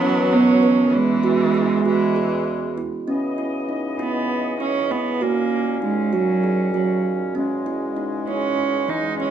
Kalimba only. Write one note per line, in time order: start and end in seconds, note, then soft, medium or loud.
0.02 0.17 C#4 medium
0.32 0.48 B3 medium
0.63 0.94 B4 medium
1.23 1.39 F#4 medium
1.54 1.70 G#4 medium
1.85 2.01 F#4 medium
2.16 2.47 G#4 medium
2.78 2.93 E4 medium
3.08 3.23 C#4 medium
3.38 3.54 E4 medium
3.69 3.84 D#4 medium
3.99 4.31 E4 medium
4.60 4.76 E4 medium
4.92 5.07 E4 medium
5.21 5.53 F#4 medium
5.82 5.98 D#4 medium
6.13 6.29 F#4 medium
6.44 6.59 G#4 medium
6.74 7.06 F#4 medium
7.35 7.51 C#4 medium
7.66 7.82 E4 medium
7.96 8.12 D#4 medium
8.27 8.59 E4 medium
8.88 9.04 E3 medium
9.20 9.30 E4 medium